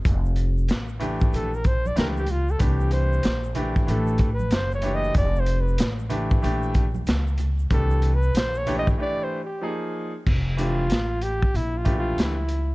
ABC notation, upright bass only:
X:1
M:4/4
L:1/8
Q:"Swing 16ths" 1/4=94
K:Flyd
V:1 name="Upright bass" clef=bass
F,,,2 A,,,2 _B,,,2 ^C,,2 | C,,2 _B,,,2 A,,,2 ^F,,,2 | F,,,2 A,,,2 _B,,,2 ^C,,2 | C,,2 _B,,,2 z4 |
F,,,2 A,,,2 _B,,,2 ^C,,2 |]